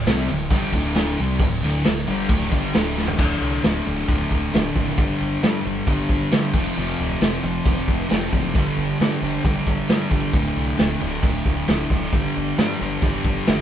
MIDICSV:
0, 0, Header, 1, 4, 480
1, 0, Start_track
1, 0, Tempo, 447094
1, 1513, Time_signature, 4, 2, 24, 8
1, 14615, End_track
2, 0, Start_track
2, 0, Title_t, "Distorted electric guitar"
2, 0, Program_c, 0, 30
2, 74, Note_on_c, 0, 48, 94
2, 80, Note_on_c, 0, 55, 100
2, 85, Note_on_c, 0, 60, 108
2, 305, Note_off_c, 0, 48, 0
2, 309, Note_off_c, 0, 55, 0
2, 311, Note_off_c, 0, 60, 0
2, 312, Note_on_c, 0, 38, 68
2, 320, Note_on_c, 0, 45, 75
2, 504, Note_off_c, 0, 38, 0
2, 508, Note_off_c, 0, 45, 0
2, 549, Note_on_c, 0, 43, 97
2, 554, Note_on_c, 0, 50, 104
2, 561, Note_on_c, 0, 55, 107
2, 783, Note_off_c, 0, 43, 0
2, 786, Note_off_c, 0, 50, 0
2, 790, Note_off_c, 0, 55, 0
2, 794, Note_on_c, 0, 38, 104
2, 805, Note_on_c, 0, 45, 91
2, 806, Note_on_c, 0, 50, 116
2, 1267, Note_off_c, 0, 38, 0
2, 1272, Note_off_c, 0, 45, 0
2, 1272, Note_off_c, 0, 50, 0
2, 1287, Note_on_c, 0, 55, 107
2, 1289, Note_on_c, 0, 48, 95
2, 1296, Note_on_c, 0, 60, 102
2, 1513, Note_off_c, 0, 55, 0
2, 1514, Note_off_c, 0, 48, 0
2, 1517, Note_off_c, 0, 60, 0
2, 1527, Note_on_c, 0, 38, 71
2, 1528, Note_on_c, 0, 45, 80
2, 1712, Note_off_c, 0, 38, 0
2, 1713, Note_off_c, 0, 45, 0
2, 1751, Note_on_c, 0, 38, 99
2, 1762, Note_on_c, 0, 45, 94
2, 1764, Note_on_c, 0, 50, 110
2, 1975, Note_off_c, 0, 38, 0
2, 1986, Note_off_c, 0, 45, 0
2, 1988, Note_on_c, 0, 38, 65
2, 1992, Note_off_c, 0, 50, 0
2, 1999, Note_on_c, 0, 45, 80
2, 2183, Note_off_c, 0, 38, 0
2, 2188, Note_off_c, 0, 45, 0
2, 2230, Note_on_c, 0, 43, 92
2, 2238, Note_on_c, 0, 50, 102
2, 2248, Note_on_c, 0, 55, 108
2, 2464, Note_off_c, 0, 43, 0
2, 2469, Note_off_c, 0, 50, 0
2, 2473, Note_off_c, 0, 55, 0
2, 2473, Note_on_c, 0, 38, 101
2, 2474, Note_on_c, 0, 45, 94
2, 2482, Note_on_c, 0, 50, 117
2, 2695, Note_off_c, 0, 38, 0
2, 2699, Note_off_c, 0, 50, 0
2, 2699, Note_on_c, 0, 43, 91
2, 2707, Note_off_c, 0, 45, 0
2, 2711, Note_on_c, 0, 50, 104
2, 2717, Note_on_c, 0, 55, 104
2, 2939, Note_off_c, 0, 43, 0
2, 2945, Note_off_c, 0, 50, 0
2, 2947, Note_on_c, 0, 38, 92
2, 2948, Note_off_c, 0, 55, 0
2, 2955, Note_on_c, 0, 45, 84
2, 2959, Note_on_c, 0, 50, 90
2, 3406, Note_off_c, 0, 38, 0
2, 3412, Note_off_c, 0, 45, 0
2, 3417, Note_off_c, 0, 50, 0
2, 3419, Note_on_c, 0, 38, 97
2, 3425, Note_on_c, 0, 45, 97
2, 3430, Note_on_c, 0, 50, 100
2, 3891, Note_off_c, 0, 38, 0
2, 3899, Note_off_c, 0, 45, 0
2, 3901, Note_off_c, 0, 50, 0
2, 3904, Note_on_c, 0, 38, 83
2, 3912, Note_on_c, 0, 45, 76
2, 3914, Note_on_c, 0, 50, 98
2, 4133, Note_off_c, 0, 38, 0
2, 4137, Note_off_c, 0, 45, 0
2, 4145, Note_off_c, 0, 50, 0
2, 4146, Note_on_c, 0, 38, 86
2, 4150, Note_on_c, 0, 45, 93
2, 4158, Note_on_c, 0, 50, 93
2, 4370, Note_off_c, 0, 38, 0
2, 4378, Note_off_c, 0, 45, 0
2, 4381, Note_off_c, 0, 50, 0
2, 4383, Note_on_c, 0, 38, 99
2, 4391, Note_on_c, 0, 45, 110
2, 4393, Note_on_c, 0, 50, 102
2, 4855, Note_off_c, 0, 38, 0
2, 4857, Note_off_c, 0, 45, 0
2, 4862, Note_off_c, 0, 50, 0
2, 4868, Note_on_c, 0, 38, 82
2, 4870, Note_on_c, 0, 45, 89
2, 4875, Note_on_c, 0, 50, 89
2, 5102, Note_off_c, 0, 38, 0
2, 5109, Note_off_c, 0, 45, 0
2, 5115, Note_off_c, 0, 50, 0
2, 5115, Note_on_c, 0, 38, 80
2, 5122, Note_on_c, 0, 45, 95
2, 5128, Note_on_c, 0, 50, 96
2, 5338, Note_off_c, 0, 38, 0
2, 5342, Note_off_c, 0, 45, 0
2, 5345, Note_off_c, 0, 50, 0
2, 5358, Note_on_c, 0, 43, 95
2, 5365, Note_on_c, 0, 50, 104
2, 5371, Note_on_c, 0, 55, 102
2, 5822, Note_off_c, 0, 43, 0
2, 5828, Note_off_c, 0, 50, 0
2, 5833, Note_off_c, 0, 55, 0
2, 5835, Note_on_c, 0, 43, 79
2, 5841, Note_on_c, 0, 50, 78
2, 5846, Note_on_c, 0, 55, 94
2, 6064, Note_off_c, 0, 43, 0
2, 6074, Note_off_c, 0, 50, 0
2, 6077, Note_on_c, 0, 43, 89
2, 6082, Note_off_c, 0, 55, 0
2, 6087, Note_on_c, 0, 50, 90
2, 6095, Note_on_c, 0, 55, 89
2, 6295, Note_off_c, 0, 43, 0
2, 6304, Note_off_c, 0, 55, 0
2, 6306, Note_off_c, 0, 50, 0
2, 6308, Note_on_c, 0, 43, 93
2, 6316, Note_on_c, 0, 55, 108
2, 6319, Note_on_c, 0, 50, 109
2, 6766, Note_off_c, 0, 43, 0
2, 6772, Note_off_c, 0, 50, 0
2, 6779, Note_on_c, 0, 43, 85
2, 6781, Note_off_c, 0, 55, 0
2, 6785, Note_on_c, 0, 50, 80
2, 6794, Note_on_c, 0, 55, 90
2, 7010, Note_off_c, 0, 43, 0
2, 7013, Note_off_c, 0, 50, 0
2, 7017, Note_off_c, 0, 55, 0
2, 7028, Note_on_c, 0, 41, 106
2, 7040, Note_on_c, 0, 48, 104
2, 7042, Note_on_c, 0, 53, 114
2, 7258, Note_off_c, 0, 41, 0
2, 7264, Note_off_c, 0, 48, 0
2, 7267, Note_off_c, 0, 53, 0
2, 7271, Note_on_c, 0, 41, 99
2, 7277, Note_on_c, 0, 48, 109
2, 7279, Note_on_c, 0, 53, 108
2, 7732, Note_off_c, 0, 41, 0
2, 7737, Note_off_c, 0, 48, 0
2, 7741, Note_off_c, 0, 53, 0
2, 7745, Note_on_c, 0, 41, 84
2, 7750, Note_on_c, 0, 48, 96
2, 7754, Note_on_c, 0, 53, 86
2, 7965, Note_off_c, 0, 41, 0
2, 7975, Note_off_c, 0, 48, 0
2, 7977, Note_off_c, 0, 53, 0
2, 7978, Note_on_c, 0, 41, 86
2, 7987, Note_on_c, 0, 48, 89
2, 7990, Note_on_c, 0, 53, 103
2, 8201, Note_off_c, 0, 41, 0
2, 8206, Note_off_c, 0, 48, 0
2, 8210, Note_off_c, 0, 53, 0
2, 8214, Note_on_c, 0, 41, 93
2, 8219, Note_on_c, 0, 48, 106
2, 8223, Note_on_c, 0, 53, 103
2, 8672, Note_off_c, 0, 41, 0
2, 8680, Note_off_c, 0, 48, 0
2, 8684, Note_on_c, 0, 41, 82
2, 8688, Note_off_c, 0, 53, 0
2, 8693, Note_on_c, 0, 48, 83
2, 8701, Note_on_c, 0, 53, 83
2, 8918, Note_off_c, 0, 41, 0
2, 8927, Note_off_c, 0, 48, 0
2, 8931, Note_on_c, 0, 41, 88
2, 8937, Note_off_c, 0, 53, 0
2, 8940, Note_on_c, 0, 48, 87
2, 8950, Note_on_c, 0, 53, 91
2, 9166, Note_off_c, 0, 41, 0
2, 9170, Note_off_c, 0, 48, 0
2, 9175, Note_off_c, 0, 53, 0
2, 9178, Note_on_c, 0, 43, 91
2, 9180, Note_on_c, 0, 50, 103
2, 9187, Note_on_c, 0, 55, 111
2, 9645, Note_off_c, 0, 43, 0
2, 9653, Note_off_c, 0, 50, 0
2, 9656, Note_off_c, 0, 55, 0
2, 9658, Note_on_c, 0, 43, 79
2, 9665, Note_on_c, 0, 50, 87
2, 9669, Note_on_c, 0, 55, 103
2, 9892, Note_off_c, 0, 43, 0
2, 9897, Note_off_c, 0, 50, 0
2, 9905, Note_on_c, 0, 43, 85
2, 9906, Note_off_c, 0, 55, 0
2, 9910, Note_on_c, 0, 50, 104
2, 9919, Note_on_c, 0, 55, 93
2, 10124, Note_off_c, 0, 43, 0
2, 10130, Note_off_c, 0, 50, 0
2, 10134, Note_off_c, 0, 55, 0
2, 10137, Note_on_c, 0, 43, 105
2, 10143, Note_on_c, 0, 50, 97
2, 10147, Note_on_c, 0, 55, 118
2, 10606, Note_off_c, 0, 43, 0
2, 10612, Note_off_c, 0, 50, 0
2, 10617, Note_off_c, 0, 55, 0
2, 10619, Note_on_c, 0, 43, 82
2, 10625, Note_on_c, 0, 50, 81
2, 10630, Note_on_c, 0, 55, 84
2, 10840, Note_off_c, 0, 43, 0
2, 10846, Note_off_c, 0, 50, 0
2, 10853, Note_on_c, 0, 43, 82
2, 10855, Note_off_c, 0, 55, 0
2, 10859, Note_on_c, 0, 50, 89
2, 10868, Note_on_c, 0, 55, 92
2, 11087, Note_off_c, 0, 43, 0
2, 11090, Note_off_c, 0, 50, 0
2, 11094, Note_off_c, 0, 55, 0
2, 11101, Note_on_c, 0, 38, 98
2, 11105, Note_on_c, 0, 45, 102
2, 11113, Note_on_c, 0, 50, 110
2, 11553, Note_off_c, 0, 38, 0
2, 11563, Note_off_c, 0, 45, 0
2, 11566, Note_on_c, 0, 38, 91
2, 11570, Note_off_c, 0, 50, 0
2, 11575, Note_on_c, 0, 45, 79
2, 11582, Note_on_c, 0, 50, 89
2, 11808, Note_off_c, 0, 38, 0
2, 11808, Note_off_c, 0, 45, 0
2, 11816, Note_off_c, 0, 50, 0
2, 11821, Note_on_c, 0, 38, 79
2, 11821, Note_on_c, 0, 45, 92
2, 11829, Note_on_c, 0, 50, 108
2, 12045, Note_off_c, 0, 38, 0
2, 12051, Note_off_c, 0, 45, 0
2, 12058, Note_on_c, 0, 38, 89
2, 12059, Note_off_c, 0, 50, 0
2, 12064, Note_on_c, 0, 45, 95
2, 12072, Note_on_c, 0, 50, 106
2, 12530, Note_off_c, 0, 38, 0
2, 12531, Note_off_c, 0, 45, 0
2, 12542, Note_on_c, 0, 38, 82
2, 12544, Note_on_c, 0, 45, 82
2, 12547, Note_off_c, 0, 50, 0
2, 12560, Note_on_c, 0, 50, 85
2, 12763, Note_off_c, 0, 38, 0
2, 12776, Note_on_c, 0, 38, 94
2, 12778, Note_off_c, 0, 45, 0
2, 12779, Note_off_c, 0, 50, 0
2, 12791, Note_on_c, 0, 45, 93
2, 12792, Note_on_c, 0, 50, 93
2, 13008, Note_off_c, 0, 38, 0
2, 13013, Note_off_c, 0, 50, 0
2, 13016, Note_off_c, 0, 45, 0
2, 13021, Note_on_c, 0, 43, 96
2, 13026, Note_on_c, 0, 50, 98
2, 13030, Note_on_c, 0, 55, 103
2, 13485, Note_off_c, 0, 43, 0
2, 13498, Note_off_c, 0, 50, 0
2, 13498, Note_on_c, 0, 43, 81
2, 13504, Note_off_c, 0, 55, 0
2, 13511, Note_on_c, 0, 50, 93
2, 13517, Note_on_c, 0, 55, 90
2, 13728, Note_off_c, 0, 43, 0
2, 13735, Note_off_c, 0, 50, 0
2, 13741, Note_on_c, 0, 43, 83
2, 13743, Note_off_c, 0, 55, 0
2, 13748, Note_on_c, 0, 50, 102
2, 13756, Note_on_c, 0, 55, 98
2, 13969, Note_off_c, 0, 43, 0
2, 13981, Note_off_c, 0, 50, 0
2, 13982, Note_on_c, 0, 43, 101
2, 13983, Note_off_c, 0, 55, 0
2, 13994, Note_on_c, 0, 50, 105
2, 13996, Note_on_c, 0, 55, 114
2, 14457, Note_off_c, 0, 43, 0
2, 14462, Note_off_c, 0, 50, 0
2, 14466, Note_off_c, 0, 55, 0
2, 14470, Note_on_c, 0, 43, 85
2, 14475, Note_on_c, 0, 50, 86
2, 14479, Note_on_c, 0, 55, 96
2, 14615, Note_off_c, 0, 43, 0
2, 14615, Note_off_c, 0, 50, 0
2, 14615, Note_off_c, 0, 55, 0
2, 14615, End_track
3, 0, Start_track
3, 0, Title_t, "Picked electric bass"
3, 0, Program_c, 1, 34
3, 69, Note_on_c, 1, 36, 107
3, 293, Note_off_c, 1, 36, 0
3, 311, Note_on_c, 1, 26, 97
3, 535, Note_off_c, 1, 26, 0
3, 543, Note_on_c, 1, 31, 110
3, 770, Note_off_c, 1, 31, 0
3, 782, Note_on_c, 1, 26, 105
3, 1233, Note_off_c, 1, 26, 0
3, 1278, Note_on_c, 1, 36, 102
3, 1493, Note_off_c, 1, 36, 0
3, 1499, Note_on_c, 1, 26, 89
3, 1729, Note_off_c, 1, 26, 0
3, 1750, Note_on_c, 1, 26, 109
3, 1974, Note_off_c, 1, 26, 0
3, 1990, Note_on_c, 1, 26, 97
3, 2215, Note_off_c, 1, 26, 0
3, 2234, Note_on_c, 1, 31, 115
3, 2451, Note_off_c, 1, 31, 0
3, 2457, Note_on_c, 1, 26, 107
3, 2688, Note_off_c, 1, 26, 0
3, 2699, Note_on_c, 1, 31, 96
3, 2929, Note_off_c, 1, 31, 0
3, 2944, Note_on_c, 1, 26, 94
3, 3395, Note_off_c, 1, 26, 0
3, 3423, Note_on_c, 1, 26, 97
3, 3595, Note_off_c, 1, 26, 0
3, 3661, Note_on_c, 1, 36, 89
3, 3833, Note_off_c, 1, 36, 0
3, 3903, Note_on_c, 1, 26, 98
3, 4074, Note_off_c, 1, 26, 0
3, 4147, Note_on_c, 1, 26, 101
3, 4317, Note_off_c, 1, 26, 0
3, 4386, Note_on_c, 1, 26, 103
3, 4556, Note_off_c, 1, 26, 0
3, 4626, Note_on_c, 1, 26, 92
3, 4796, Note_off_c, 1, 26, 0
3, 4865, Note_on_c, 1, 26, 86
3, 5035, Note_off_c, 1, 26, 0
3, 5105, Note_on_c, 1, 30, 94
3, 5275, Note_off_c, 1, 30, 0
3, 5345, Note_on_c, 1, 31, 93
3, 5515, Note_off_c, 1, 31, 0
3, 5586, Note_on_c, 1, 31, 88
3, 5756, Note_off_c, 1, 31, 0
3, 5829, Note_on_c, 1, 43, 103
3, 5998, Note_off_c, 1, 43, 0
3, 6068, Note_on_c, 1, 31, 108
3, 6237, Note_off_c, 1, 31, 0
3, 6299, Note_on_c, 1, 31, 99
3, 6471, Note_off_c, 1, 31, 0
3, 6543, Note_on_c, 1, 31, 96
3, 6714, Note_off_c, 1, 31, 0
3, 6786, Note_on_c, 1, 43, 97
3, 6956, Note_off_c, 1, 43, 0
3, 7015, Note_on_c, 1, 29, 93
3, 7188, Note_off_c, 1, 29, 0
3, 7266, Note_on_c, 1, 29, 96
3, 7435, Note_off_c, 1, 29, 0
3, 7503, Note_on_c, 1, 26, 96
3, 7673, Note_off_c, 1, 26, 0
3, 7736, Note_on_c, 1, 29, 100
3, 7909, Note_off_c, 1, 29, 0
3, 7977, Note_on_c, 1, 29, 107
3, 8150, Note_off_c, 1, 29, 0
3, 8220, Note_on_c, 1, 29, 101
3, 8391, Note_off_c, 1, 29, 0
3, 8456, Note_on_c, 1, 29, 98
3, 8629, Note_off_c, 1, 29, 0
3, 8703, Note_on_c, 1, 29, 90
3, 8873, Note_off_c, 1, 29, 0
3, 8941, Note_on_c, 1, 30, 94
3, 9179, Note_off_c, 1, 30, 0
3, 9179, Note_on_c, 1, 31, 94
3, 9351, Note_off_c, 1, 31, 0
3, 9413, Note_on_c, 1, 31, 92
3, 9587, Note_off_c, 1, 31, 0
3, 9665, Note_on_c, 1, 43, 102
3, 9834, Note_off_c, 1, 43, 0
3, 9893, Note_on_c, 1, 31, 103
3, 10067, Note_off_c, 1, 31, 0
3, 10138, Note_on_c, 1, 31, 104
3, 10310, Note_off_c, 1, 31, 0
3, 10377, Note_on_c, 1, 31, 95
3, 10550, Note_off_c, 1, 31, 0
3, 10621, Note_on_c, 1, 43, 96
3, 10792, Note_off_c, 1, 43, 0
3, 10858, Note_on_c, 1, 31, 89
3, 11030, Note_off_c, 1, 31, 0
3, 11089, Note_on_c, 1, 26, 96
3, 11265, Note_off_c, 1, 26, 0
3, 11335, Note_on_c, 1, 36, 94
3, 11509, Note_off_c, 1, 36, 0
3, 11578, Note_on_c, 1, 26, 93
3, 11750, Note_off_c, 1, 26, 0
3, 11820, Note_on_c, 1, 26, 97
3, 11992, Note_off_c, 1, 26, 0
3, 12050, Note_on_c, 1, 26, 100
3, 12225, Note_off_c, 1, 26, 0
3, 12297, Note_on_c, 1, 26, 89
3, 12469, Note_off_c, 1, 26, 0
3, 12537, Note_on_c, 1, 26, 89
3, 12710, Note_off_c, 1, 26, 0
3, 12777, Note_on_c, 1, 26, 91
3, 12950, Note_off_c, 1, 26, 0
3, 13016, Note_on_c, 1, 31, 104
3, 13189, Note_off_c, 1, 31, 0
3, 13277, Note_on_c, 1, 31, 97
3, 13443, Note_off_c, 1, 31, 0
3, 13508, Note_on_c, 1, 43, 103
3, 13676, Note_off_c, 1, 43, 0
3, 13748, Note_on_c, 1, 31, 105
3, 13917, Note_off_c, 1, 31, 0
3, 13977, Note_on_c, 1, 31, 103
3, 14149, Note_off_c, 1, 31, 0
3, 14216, Note_on_c, 1, 31, 94
3, 14388, Note_off_c, 1, 31, 0
3, 14469, Note_on_c, 1, 30, 94
3, 14615, Note_off_c, 1, 30, 0
3, 14615, End_track
4, 0, Start_track
4, 0, Title_t, "Drums"
4, 64, Note_on_c, 9, 49, 92
4, 75, Note_on_c, 9, 38, 121
4, 172, Note_off_c, 9, 49, 0
4, 183, Note_off_c, 9, 38, 0
4, 198, Note_on_c, 9, 38, 33
4, 305, Note_off_c, 9, 38, 0
4, 309, Note_on_c, 9, 49, 74
4, 417, Note_off_c, 9, 49, 0
4, 543, Note_on_c, 9, 36, 116
4, 543, Note_on_c, 9, 49, 86
4, 650, Note_off_c, 9, 36, 0
4, 650, Note_off_c, 9, 49, 0
4, 779, Note_on_c, 9, 49, 70
4, 780, Note_on_c, 9, 36, 81
4, 886, Note_off_c, 9, 49, 0
4, 888, Note_off_c, 9, 36, 0
4, 1014, Note_on_c, 9, 49, 86
4, 1025, Note_on_c, 9, 38, 111
4, 1121, Note_off_c, 9, 49, 0
4, 1132, Note_off_c, 9, 38, 0
4, 1257, Note_on_c, 9, 49, 64
4, 1364, Note_off_c, 9, 49, 0
4, 1490, Note_on_c, 9, 49, 90
4, 1498, Note_on_c, 9, 36, 109
4, 1598, Note_off_c, 9, 49, 0
4, 1606, Note_off_c, 9, 36, 0
4, 1735, Note_on_c, 9, 49, 70
4, 1843, Note_off_c, 9, 49, 0
4, 1979, Note_on_c, 9, 49, 89
4, 1990, Note_on_c, 9, 38, 116
4, 2086, Note_off_c, 9, 49, 0
4, 2097, Note_off_c, 9, 38, 0
4, 2109, Note_on_c, 9, 38, 34
4, 2216, Note_off_c, 9, 38, 0
4, 2220, Note_on_c, 9, 49, 61
4, 2327, Note_off_c, 9, 49, 0
4, 2455, Note_on_c, 9, 49, 82
4, 2461, Note_on_c, 9, 36, 110
4, 2562, Note_off_c, 9, 49, 0
4, 2569, Note_off_c, 9, 36, 0
4, 2701, Note_on_c, 9, 49, 66
4, 2702, Note_on_c, 9, 36, 88
4, 2809, Note_off_c, 9, 49, 0
4, 2810, Note_off_c, 9, 36, 0
4, 2936, Note_on_c, 9, 49, 82
4, 2947, Note_on_c, 9, 38, 115
4, 3044, Note_off_c, 9, 49, 0
4, 3054, Note_off_c, 9, 38, 0
4, 3196, Note_on_c, 9, 38, 68
4, 3297, Note_on_c, 9, 43, 98
4, 3303, Note_off_c, 9, 38, 0
4, 3405, Note_off_c, 9, 43, 0
4, 3421, Note_on_c, 9, 49, 60
4, 3421, Note_on_c, 9, 57, 114
4, 3423, Note_on_c, 9, 36, 118
4, 3529, Note_off_c, 9, 49, 0
4, 3529, Note_off_c, 9, 57, 0
4, 3530, Note_off_c, 9, 36, 0
4, 3897, Note_on_c, 9, 49, 69
4, 3908, Note_on_c, 9, 38, 114
4, 4004, Note_off_c, 9, 49, 0
4, 4015, Note_off_c, 9, 38, 0
4, 4386, Note_on_c, 9, 36, 106
4, 4386, Note_on_c, 9, 49, 65
4, 4493, Note_off_c, 9, 36, 0
4, 4493, Note_off_c, 9, 49, 0
4, 4626, Note_on_c, 9, 36, 85
4, 4734, Note_off_c, 9, 36, 0
4, 4872, Note_on_c, 9, 49, 63
4, 4882, Note_on_c, 9, 38, 111
4, 4979, Note_off_c, 9, 49, 0
4, 4990, Note_off_c, 9, 38, 0
4, 5107, Note_on_c, 9, 36, 85
4, 5214, Note_off_c, 9, 36, 0
4, 5248, Note_on_c, 9, 38, 34
4, 5345, Note_on_c, 9, 49, 58
4, 5346, Note_on_c, 9, 36, 112
4, 5355, Note_off_c, 9, 38, 0
4, 5453, Note_off_c, 9, 36, 0
4, 5453, Note_off_c, 9, 49, 0
4, 5823, Note_on_c, 9, 49, 61
4, 5834, Note_on_c, 9, 38, 115
4, 5930, Note_off_c, 9, 49, 0
4, 5941, Note_off_c, 9, 38, 0
4, 6297, Note_on_c, 9, 49, 60
4, 6302, Note_on_c, 9, 36, 107
4, 6405, Note_off_c, 9, 49, 0
4, 6409, Note_off_c, 9, 36, 0
4, 6541, Note_on_c, 9, 36, 94
4, 6648, Note_off_c, 9, 36, 0
4, 6778, Note_on_c, 9, 49, 58
4, 6789, Note_on_c, 9, 38, 116
4, 6886, Note_off_c, 9, 49, 0
4, 6896, Note_off_c, 9, 38, 0
4, 7014, Note_on_c, 9, 49, 109
4, 7019, Note_on_c, 9, 36, 105
4, 7121, Note_off_c, 9, 49, 0
4, 7126, Note_off_c, 9, 36, 0
4, 7258, Note_on_c, 9, 49, 69
4, 7365, Note_off_c, 9, 49, 0
4, 7738, Note_on_c, 9, 49, 72
4, 7749, Note_on_c, 9, 38, 114
4, 7845, Note_off_c, 9, 49, 0
4, 7856, Note_off_c, 9, 38, 0
4, 8215, Note_on_c, 9, 49, 66
4, 8220, Note_on_c, 9, 36, 113
4, 8322, Note_off_c, 9, 49, 0
4, 8327, Note_off_c, 9, 36, 0
4, 8458, Note_on_c, 9, 36, 93
4, 8566, Note_off_c, 9, 36, 0
4, 8696, Note_on_c, 9, 49, 69
4, 8707, Note_on_c, 9, 38, 106
4, 8803, Note_off_c, 9, 49, 0
4, 8814, Note_off_c, 9, 38, 0
4, 8941, Note_on_c, 9, 36, 94
4, 9048, Note_off_c, 9, 36, 0
4, 9181, Note_on_c, 9, 36, 115
4, 9184, Note_on_c, 9, 49, 60
4, 9288, Note_off_c, 9, 36, 0
4, 9292, Note_off_c, 9, 49, 0
4, 9667, Note_on_c, 9, 49, 66
4, 9678, Note_on_c, 9, 38, 116
4, 9774, Note_off_c, 9, 49, 0
4, 9785, Note_off_c, 9, 38, 0
4, 10142, Note_on_c, 9, 36, 109
4, 10146, Note_on_c, 9, 49, 62
4, 10250, Note_off_c, 9, 36, 0
4, 10253, Note_off_c, 9, 49, 0
4, 10379, Note_on_c, 9, 36, 93
4, 10486, Note_off_c, 9, 36, 0
4, 10613, Note_on_c, 9, 49, 60
4, 10624, Note_on_c, 9, 38, 117
4, 10720, Note_off_c, 9, 49, 0
4, 10731, Note_off_c, 9, 38, 0
4, 10857, Note_on_c, 9, 36, 94
4, 10964, Note_off_c, 9, 36, 0
4, 11090, Note_on_c, 9, 49, 60
4, 11095, Note_on_c, 9, 36, 102
4, 11197, Note_off_c, 9, 49, 0
4, 11202, Note_off_c, 9, 36, 0
4, 11574, Note_on_c, 9, 49, 62
4, 11585, Note_on_c, 9, 38, 115
4, 11682, Note_off_c, 9, 49, 0
4, 11692, Note_off_c, 9, 38, 0
4, 12053, Note_on_c, 9, 49, 71
4, 12057, Note_on_c, 9, 36, 112
4, 12160, Note_off_c, 9, 49, 0
4, 12164, Note_off_c, 9, 36, 0
4, 12299, Note_on_c, 9, 36, 88
4, 12406, Note_off_c, 9, 36, 0
4, 12535, Note_on_c, 9, 49, 68
4, 12545, Note_on_c, 9, 38, 116
4, 12642, Note_off_c, 9, 49, 0
4, 12653, Note_off_c, 9, 38, 0
4, 12779, Note_on_c, 9, 36, 91
4, 12886, Note_off_c, 9, 36, 0
4, 13012, Note_on_c, 9, 49, 63
4, 13019, Note_on_c, 9, 36, 107
4, 13120, Note_off_c, 9, 49, 0
4, 13127, Note_off_c, 9, 36, 0
4, 13501, Note_on_c, 9, 49, 67
4, 13511, Note_on_c, 9, 38, 111
4, 13608, Note_off_c, 9, 49, 0
4, 13619, Note_off_c, 9, 38, 0
4, 13977, Note_on_c, 9, 49, 61
4, 13982, Note_on_c, 9, 36, 115
4, 14084, Note_off_c, 9, 49, 0
4, 14089, Note_off_c, 9, 36, 0
4, 14220, Note_on_c, 9, 36, 94
4, 14328, Note_off_c, 9, 36, 0
4, 14455, Note_on_c, 9, 49, 61
4, 14466, Note_on_c, 9, 38, 115
4, 14562, Note_off_c, 9, 49, 0
4, 14573, Note_off_c, 9, 38, 0
4, 14615, End_track
0, 0, End_of_file